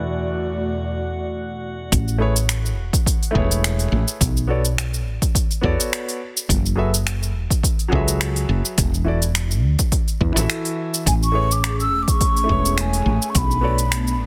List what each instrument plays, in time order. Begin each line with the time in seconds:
Already playing: analog synth pad E2 B2 A3 F#4 D5, grand piano E3 E4 F#4 A4 D5, synth texture F#4 F#5
1.92 fretless electric bass A1, kick, open hi-hat, shaker
2.08 shaker
2.18 grand piano A3 E4 G#4 B4 C#5
2.36 open hi-hat, shaker
2.49 finger snap, open hi-hat, shaker
2.66 shaker
2.78 fretless electric bass E1
2.93 kick, open hi-hat, shaker
3.06 kick, open hi-hat, shaker
3.23 open hi-hat, shaker
3.31 grand piano A3 E4 G#4
3.35 fretless electric bass E1, grand piano B4 C#5, kick
3.51 open hi-hat, shaker
3.64 finger snap, open hi-hat, shaker
3.79 open hi-hat, shaker
3.92 fretless electric bass A1
4.08 shaker
4.21 fretless electric bass B1, kick, open hi-hat, shaker
4.37 shaker
4.47 grand piano B3 F#4 A4 C#5 D5
4.65 open hi-hat, shaker
4.78 finger snap, open hi-hat, shaker
4.94 shaker
5.06 fretless electric bass A1
5.22 kick, open hi-hat, shaker
5.35 kick, open hi-hat, shaker
5.51 open hi-hat, shaker
5.61 fretless electric bass E2, grand piano B3 F#4 A4 C#5 D5, kick
5.80 open hi-hat, shaker
5.93 finger snap, open hi-hat, shaker
6.09 open hi-hat, shaker
6.37 shaker
6.49 fretless electric bass F#1, kick, open hi-hat, shaker
6.66 shaker
6.75 grand piano F#3 F#4 G#4 A4 B4 E5
6.94 open hi-hat, shaker
7.07 finger snap, open hi-hat, shaker
7.23 shaker
7.35 fretless electric bass E1
7.50 kick, open hi-hat, shaker
7.63 kick, open hi-hat, shaker
7.79 open hi-hat, shaker
7.88 grand piano F#3 F#4 G#4, kick
7.92 fretless electric bass C#2, grand piano A4 B4 E5
8.08 open hi-hat, shaker
8.21 finger snap, open hi-hat, shaker
8.36 open hi-hat, shaker
8.49 fretless electric bass F#1
8.65 shaker
8.78 fretless electric bass E1, kick, open hi-hat, shaker
8.94 shaker
9.05 grand piano E3 E4 F#4 A4 D5
9.22 open hi-hat, shaker
9.35 finger snap, open hi-hat, shaker
9.51 shaker
9.63 fretless electric bass D2
9.79 kick, open hi-hat, shaker
9.92 kick, open hi-hat, shaker
10.08 open hi-hat, shaker
10.21 fretless electric bass E2, kick
10.32 fretless electric bass A1, grand piano E3 E4 F#4
10.37 grand piano A4 E5, open hi-hat, shaker
10.50 finger snap, open hi-hat, shaker
10.65 open hi-hat, shaker
10.94 shaker
11.06 fretless electric bass A1, analog synth pad A3 C#4 G#4, flute G#5, kick, open hi-hat, shaker
11.23 flute C#6, shaker
11.32 grand piano A3 E4 G#4 B4 C#5
11.51 flute D6, open hi-hat, shaker
11.64 finger snap, open hi-hat, shaker
11.80 flute E6, shaker
11.92 fretless electric bass E1
12.03 flute D6
12.08 flute C#6, kick, open hi-hat, shaker
12.21 kick, open hi-hat, shaker
12.36 open hi-hat, shaker
12.44 grand piano A3 E4 G#4
12.49 fretless electric bass E1, grand piano B4 C#5, kick
12.65 open hi-hat, shaker
12.78 flute G#5, finger snap, open hi-hat, shaker
12.93 open hi-hat, shaker
13.06 fretless electric bass A1
13.22 shaker
13.30 flute C#6
13.35 fretless electric bass B1, analog synth pad B3 D4, flute B5, kick, open hi-hat, shaker
13.51 shaker
13.61 grand piano B3 F#4 A4 C#5 D5
13.78 open hi-hat, shaker
13.92 finger snap, open hi-hat, shaker
14.07 shaker
14.20 fretless electric bass A1